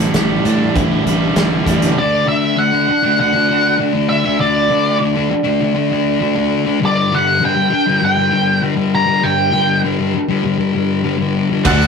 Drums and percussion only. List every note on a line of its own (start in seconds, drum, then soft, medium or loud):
0.14 snare loud
0.14 closed hi-hat medium
0.45 closed hi-hat medium
0.76 kick loud
0.76 closed hi-hat medium
1.07 closed hi-hat medium
1.36 snare loud
1.36 closed hi-hat medium
1.67 kick medium
1.67 closed hi-hat medium
1.82 closed hi-hat medium
11.65 kick loud
11.65 crash loud
11.65 tambourine soft
11.82 tambourine soft